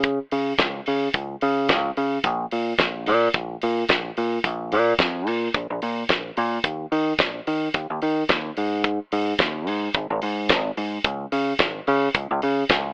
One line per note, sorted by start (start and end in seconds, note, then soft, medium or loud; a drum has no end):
0.00 0.18 C#3 loud
0.00 kick loud
0.00 closed hi-hat medium
0.31 0.52 C#3 medium
0.31 open hi-hat medium
0.58 0.79 C#2 loud
0.58 kick loud
0.58 snare medium
0.58 closed hi-hat medium
0.86 1.08 C#3 medium
0.86 open hi-hat medium
1.14 1.35 C#2 medium
1.14 kick loud
1.14 closed hi-hat medium
1.41 1.71 C#3 medium
1.41 open hi-hat medium
1.69 1.90 C#2 loud
1.69 kick loud
1.69 snare loud
1.69 closed hi-hat medium
1.97 2.17 C#3 medium
1.97 open hi-hat medium
2.24 2.45 A#1 medium
2.24 kick loud
2.24 closed hi-hat medium
2.51 2.73 A#2 medium
2.51 open hi-hat medium
2.78 3.09 A#1 medium
2.78 kick medium
2.78 snare medium
2.78 closed hi-hat medium
3.06 3.28 A#2 medium
3.06 open hi-hat medium
3.34 3.55 A#1 medium
3.34 kick loud
3.34 closed hi-hat medium
3.62 3.83 A#2 medium
3.62 open hi-hat medium
3.89 4.10 A#1 loud
3.89 kick medium
3.89 snare loud
3.89 closed hi-hat medium
4.17 4.38 A#2 medium
4.17 open hi-hat medium
4.44 4.74 A#1 medium
4.44 kick loud
4.44 closed hi-hat medium
4.72 4.93 A#2 medium
4.72 open hi-hat medium
4.99 5.27 F2 medium
4.99 kick loud
4.99 snare loud
4.99 closed hi-hat medium
5.27 5.48 A#2 medium
5.27 open hi-hat medium
5.54 5.66 A#1 medium
5.54 kick loud
5.54 closed hi-hat medium
5.70 5.79 A#1 medium
5.82 6.03 A#2 loud
5.82 open hi-hat medium
6.09 6.30 A#1 loud
6.09 kick medium
6.09 snare medium
6.09 closed hi-hat medium
6.37 6.58 A#2 medium
6.37 open hi-hat medium
6.64 6.85 D#2 loud
6.64 kick loud
6.64 closed hi-hat medium
6.92 7.12 D#3 medium
6.92 open hi-hat medium
7.19 7.40 A#1 medium
7.19 kick loud
7.19 snare loud
7.19 closed hi-hat medium
7.47 7.68 D#3 medium
7.47 open hi-hat medium
7.74 7.86 D#2 loud
7.74 kick loud
7.74 closed hi-hat medium
7.90 7.99 D#2 loud
8.02 8.23 D#3 medium
8.02 open hi-hat medium
8.29 8.50 D#2 loud
8.29 kick loud
8.29 snare loud
8.29 closed hi-hat medium
8.57 8.98 G#2 loud
8.57 open hi-hat medium
8.84 kick loud
8.84 closed hi-hat medium
9.12 9.33 G#2 medium
9.12 open hi-hat medium
9.39 9.68 D#2 medium
9.39 kick loud
9.39 snare loud
9.39 closed hi-hat medium
9.67 9.88 G#2 medium
9.67 open hi-hat medium
9.94 10.06 G#1 medium
9.94 kick loud
9.94 closed hi-hat medium
10.10 10.19 G#1 loud
10.22 10.51 G#2 medium
10.22 open hi-hat medium
10.49 10.70 G#1 loud
10.49 kick loud
10.49 snare loud
10.49 closed hi-hat medium
10.77 10.98 G#2 loud
10.77 open hi-hat medium
11.04 11.25 C#2 medium
11.04 kick loud
11.04 closed hi-hat medium
11.32 11.52 C#3 medium
11.32 open hi-hat medium
11.59 11.80 G#1 loud
11.59 kick loud
11.59 snare loud
11.59 closed hi-hat medium
11.87 12.08 C#3 loud
11.87 open hi-hat medium
12.14 12.26 C#2 loud
12.14 kick loud
12.14 closed hi-hat medium
12.31 12.39 C#2 loud
12.42 12.63 C#3 medium
12.42 open hi-hat medium
12.69 12.90 C#2 loud
12.69 kick loud
12.69 snare loud
12.69 closed hi-hat medium